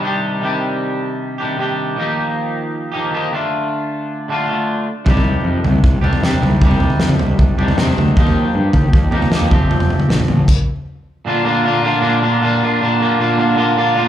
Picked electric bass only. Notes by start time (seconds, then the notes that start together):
5.07 C2
5.44 F2
5.65 C2
5.83 C2
6.03 C2
6.23 C3
6.41 C2
6.61 C2
6.99 F2
7.20 C2
7.39 C2
7.59 C2
7.79 C3
7.98 D2
8.17 D#2
8.55 G2
8.73 D#2
8.93 D#2
9.13 D#2
9.33 D#2
9.52 F1
9.71 F1
10.09 A#1
10.29 A1